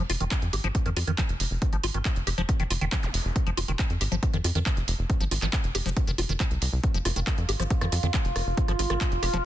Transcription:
0.10 analog synth bass F1, acid bass F4, open hi-hat
0.20 analog synth bass F1, acid bass D#3, closed hi-hat
0.31 kick, clap, closed hi-hat
0.42 analog synth bass F2, closed hi-hat
0.53 analog synth bass G#1, acid bass G4, open hi-hat
0.64 analog synth bass G#1, acid bass F3, closed hi-hat
0.75 kick, closed hi-hat
0.86 analog synth bass F2, acid bass D#3, closed hi-hat
0.97 analog synth bass F2, acid bass F4, open hi-hat
1.07 analog synth bass F2, acid bass D#3, closed hi-hat
1.18 acid bass F3, kick, clap, closed hi-hat
1.29 analog synth bass F1, closed hi-hat
1.40 analog synth bass F1, open hi-hat
1.51 analog synth bass F1
1.62 kick, closed hi-hat
1.73 analog synth bass G#1, acid bass F3, closed hi-hat
1.84 analog synth bass G#1, acid bass F4, open hi-hat
1.94 analog synth bass G#1, acid bass D#3, closed hi-hat
2.05 kick, clap, closed hi-hat
2.16 analog synth bass F1, closed hi-hat
2.27 analog synth bass F1, acid bass G4, open hi-hat
2.38 analog synth bass F1, acid bass F3, closed hi-hat
2.49 kick, closed hi-hat
2.60 analog synth bass F1, acid bass D#3, closed hi-hat
2.71 analog synth bass F1, acid bass F4, open hi-hat
2.81 analog synth bass F1, acid bass D#3, closed hi-hat
2.92 acid bass F3, kick, clap, closed hi-hat
3.03 analog synth bass F1, closed hi-hat, zap
3.14 analog synth bass F1, open hi-hat
3.25 analog synth bass F1
3.36 kick, closed hi-hat
3.47 analog synth bass F1, acid bass F3, closed hi-hat
3.57 analog synth bass F1, acid bass F4, open hi-hat
3.68 analog synth bass F1, acid bass D#3, closed hi-hat
3.79 kick, clap, closed hi-hat
3.90 analog synth bass F2, closed hi-hat
4.01 analog synth bass G#1, acid bass G4, open hi-hat
4.12 analog synth bass G#1, acid bass F3, closed hi-hat
4.23 kick, closed hi-hat
4.34 analog synth bass F2, acid bass D#3, closed hi-hat
4.44 analog synth bass F2, acid bass F4, open hi-hat
4.55 analog synth bass F2, acid bass D#3, closed hi-hat
4.66 acid bass F3, kick, clap, closed hi-hat
4.77 analog synth bass F1, closed hi-hat
4.88 analog synth bass F1, open hi-hat
4.99 analog synth bass F1
5.10 kick, closed hi-hat
5.20 analog synth bass G#1, acid bass F3, closed hi-hat
5.31 analog synth bass G#1, acid bass F4, open hi-hat
5.42 analog synth bass G#1, acid bass D#3, clap, closed hi-hat
5.53 kick, clap, closed hi-hat
5.64 analog synth bass F1, closed hi-hat
5.75 analog synth bass F1, acid bass G4, open hi-hat
5.86 analog synth bass F1, acid bass F3, closed hi-hat
5.97 kick, closed hi-hat
6.07 analog synth bass F1, acid bass D#3, closed hi-hat
6.18 analog synth bass F1, acid bass F4, open hi-hat
6.29 analog synth bass F1, acid bass D#3, closed hi-hat
6.40 acid bass F3, kick, clap, closed hi-hat
6.51 analog synth bass C2, closed hi-hat
6.62 analog synth bass C2, open hi-hat
6.73 analog synth bass C2
6.84 synth drone F4, kick, closed hi-hat
6.94 analog synth bass F1, acid bass F3, closed hi-hat
7.05 analog synth bass F1, acid bass F4, cross-stick, open hi-hat
7.16 analog synth bass F1, acid bass D#3, closed hi-hat
7.27 kick, cross-stick, clap, closed hi-hat
7.38 analog synth bass F2, closed hi-hat
7.49 analog synth bass G#1, acid bass G4, open hi-hat
7.60 analog synth bass G#1, acid bass F3, cross-stick, closed hi-hat
7.70 kick, closed hi-hat
7.81 analog synth bass F2, acid bass D#3, cross-stick, closed hi-hat
7.92 analog synth bass F2, acid bass F4, open hi-hat
8.03 analog synth bass F2, acid bass D#3, closed hi-hat
8.14 acid bass F3, kick, cross-stick, clap, closed hi-hat
8.25 analog synth bass F1, closed hi-hat
8.36 analog synth bass F1, cross-stick, open hi-hat
8.47 analog synth bass F1
8.57 kick, closed hi-hat
8.68 analog synth bass G#1, acid bass F3, cross-stick, closed hi-hat
8.79 analog synth bass G#1, acid bass F4, open hi-hat
8.90 analog synth bass G#1, acid bass D#3, cross-stick, closed hi-hat
9.01 kick, clap, closed hi-hat
9.12 analog synth bass F1, closed hi-hat
9.23 analog synth bass F1, acid bass G4, cross-stick, open hi-hat
9.34 analog synth bass F1, acid bass F3, closed hi-hat

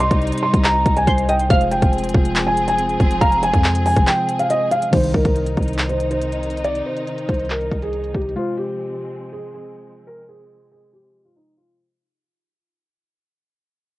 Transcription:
Already playing: synth keys C3 G3 D#4 C5, string section C3 G3 D#4, synth pluck D5
0.00 felt piano C6, closed hi-hat
0.11 808-style bass C2, kick, closed hi-hat
0.22 closed hi-hat
0.27 closed hi-hat
0.32 closed hi-hat
0.38 closed hi-hat
0.43 felt piano C6
0.54 808-style bass C2, kick, closed hi-hat
0.64 felt piano A#5, clap, closed hi-hat
0.86 808-style bass C2, kick, closed hi-hat
0.97 felt piano G#5, closed hi-hat
1.07 808-style bass C2, synth pluck C5, kick, closed hi-hat
1.18 closed hi-hat
1.29 synth pluck D#5, felt piano G5, closed hi-hat
1.39 closed hi-hat
1.48 808-style bass F1, synth keys C3 G#3 F4, string section F3 C4 G#4, felt piano F5, synth pluck F5, kick, closed hi-hat
1.52 synth keys C5
1.61 closed hi-hat
1.71 felt piano G5, closed hi-hat
1.82 808-style bass F1, kick, closed hi-hat
1.93 closed hi-hat
1.98 closed hi-hat
2.04 closed hi-hat
2.09 closed hi-hat
2.14 808-style bass F1, kick
2.25 closed hi-hat
2.36 clap, closed hi-hat
2.47 felt piano G#5
2.57 closed hi-hat
2.68 felt piano G#5, closed hi-hat
2.79 closed hi-hat
2.89 closed hi-hat
3.00 808-style bass F1, kick, closed hi-hat
3.11 closed hi-hat
3.21 808-style bass F1, synth pluck F5, felt piano A#5, kick, closed hi-hat
3.32 closed hi-hat
3.43 felt piano G#5, closed hi-hat
3.54 808-style bass F2, kick, closed hi-hat
3.64 clap, closed hi-hat
3.75 closed hi-hat
3.86 felt piano G#5, open hi-hat
3.97 808-style bass F1, kick, closed hi-hat
4.07 felt piano G5, clap, closed hi-hat
4.29 closed hi-hat
4.39 felt piano F5, closed hi-hat
4.50 felt piano D#5, closed hi-hat
4.72 felt piano F5, closed hi-hat
4.82 closed hi-hat
4.91 808-style bass C2, synth keys C3 D#3 D#4, string section C3 D#3 D#4, felt piano C5, kick, closed hi-hat, crash
4.95 synth keys C5
5.04 closed hi-hat
5.14 808-style bass C2, felt piano A#4, kick
5.25 808-style bass C2, kick, closed hi-hat
5.36 closed hi-hat
5.47 closed hi-hat
5.57 808-style bass C2, kick, closed hi-hat
5.63 closed hi-hat
5.68 closed hi-hat
5.73 closed hi-hat
5.79 clap, closed hi-hat
5.89 felt piano C5, closed hi-hat
6.00 closed hi-hat
6.11 felt piano C5, closed hi-hat
6.22 closed hi-hat
6.32 closed hi-hat
6.43 closed hi-hat
6.50 closed hi-hat
6.57 closed hi-hat
6.64 felt piano D5, closed hi-hat
6.75 closed hi-hat
6.86 felt piano C5
6.97 closed hi-hat
7.07 closed hi-hat
7.18 closed hi-hat
7.28 808-style bass C2, felt piano C5, kick, closed hi-hat
7.34 closed hi-hat
7.39 closed hi-hat
7.45 closed hi-hat
7.50 felt piano A#4, clap, closed hi-hat
7.61 closed hi-hat
7.71 808-style bass C2, kick, closed hi-hat
7.82 felt piano G#4, closed hi-hat
7.93 closed hi-hat
8.04 closed hi-hat
8.14 808-style bass C2, felt piano G4, kick, closed hi-hat
8.22 closed hi-hat
8.29 closed hi-hat
8.34 synth keys C3 G#3 F4, string section F3 G#3 C4, felt piano F4
8.38 synth keys C5
8.57 felt piano G4
9.32 felt piano G#4
9.54 felt piano G#4
10.07 felt piano A#4
10.29 felt piano G#4
10.72 felt piano G#4
10.93 felt piano G4
11.25 felt piano F4
11.36 felt piano D#4
11.57 felt piano F4

